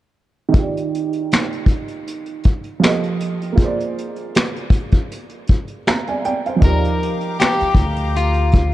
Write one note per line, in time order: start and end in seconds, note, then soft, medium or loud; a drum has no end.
0.49 2.75 D#3 medium
0.49 2.77 D#4 medium
0.54 kick loud
0.54 closed hi-hat medium
0.59 2.80 G4 medium
0.59 2.82 D5 medium
0.77 closed hi-hat soft
0.95 closed hi-hat medium
1.13 closed hi-hat soft
1.31 finger snap medium
1.31 snare loud
1.31 closed hi-hat medium
1.52 closed hi-hat soft
1.66 kick medium
1.66 closed hi-hat medium
1.88 closed hi-hat soft
2.07 closed hi-hat medium
2.26 closed hi-hat soft
2.43 kick medium
2.43 closed hi-hat medium
2.64 closed hi-hat soft
2.80 3.57 F3 medium
2.80 3.54 F4 medium
2.80 3.58 G4 medium
2.80 snare loud
2.80 closed hi-hat medium
2.84 3.59 A4 medium
2.84 3.60 D#5 medium
2.84 finger snap medium
3.03 closed hi-hat soft
3.20 closed hi-hat medium
3.42 closed hi-hat soft
3.52 5.79 A#3 medium
3.52 5.81 F4 medium
3.57 5.82 G#4 medium
3.57 kick loud
3.57 closed hi-hat medium
3.62 5.84 C5 medium
3.62 5.86 D5 medium
3.80 closed hi-hat soft
3.98 closed hi-hat medium
4.16 closed hi-hat soft
4.35 finger snap medium
4.35 snare loud
4.35 closed hi-hat medium
4.56 closed hi-hat soft
4.70 kick medium
4.70 closed hi-hat medium
4.91 kick medium
4.91 closed hi-hat soft
5.11 closed hi-hat medium
5.29 closed hi-hat soft
5.47 kick medium
5.47 closed hi-hat medium
5.67 closed hi-hat soft
5.87 6.07 F5 soft
5.87 6.07 A#5 medium
5.87 finger snap medium
5.87 snare loud
5.87 closed hi-hat medium
6.07 6.24 D5 medium
6.07 6.24 G#5 medium
6.07 closed hi-hat soft
6.24 6.45 D5 medium
6.24 6.45 G5 medium
6.24 closed hi-hat medium
6.46 6.82 C5 medium
6.46 6.82 F5 medium
6.46 closed hi-hat soft
6.56 8.74 F3 medium
6.56 8.74 D#4 medium
6.62 7.12 D#2 medium
6.62 8.74 F4 medium
6.62 8.74 G4 medium
6.62 7.39 A#4 medium
6.62 8.74 F5 medium
6.62 8.74 A#5 medium
6.62 8.74 D6 medium
6.62 kick loud
6.62 closed hi-hat medium
6.66 8.74 G4 medium
6.66 8.74 D5 medium
6.85 closed hi-hat soft
7.03 closed hi-hat medium
7.21 closed hi-hat soft
7.40 8.17 G4 medium
7.40 finger snap medium
7.40 snare loud
7.40 closed hi-hat medium
7.61 muted upright bass stroke soft
7.61 closed hi-hat soft
7.75 8.74 D2 loud
7.75 kick medium
7.75 closed hi-hat medium
7.96 closed hi-hat soft
8.16 8.74 F4 medium
8.16 closed hi-hat medium
8.34 closed hi-hat soft
8.52 kick medium
8.52 closed hi-hat medium